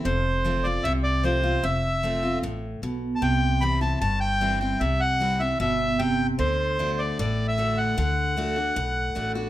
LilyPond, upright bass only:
\new Staff \with { instrumentName = "Upright bass" } { \clef bass \time 4/4 \key c \lydian \tempo 4 = 151 f,,2 c,2 | f,,2 a,,4 b,,4 | c,2 g,,2 | c,2 g,,2 |
d,2 a,,2 | d,2 b,,4 a,,4 | }